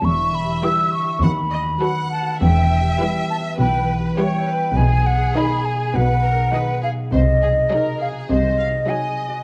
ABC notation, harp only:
X:1
M:4/4
L:1/8
Q:1/4=102
K:Edor
V:1 name="Harp"
(3E, G, G (3E e G (3^D, A, F (3A B A | (3E, B, G (3B e B (3E, B, G (3B e B | [K:G#dor] (3B,, F, D (3G D G (3B,, F, D (3G D G | (3^B,, F, D (3F G F (3B,, F, D (3F G F |]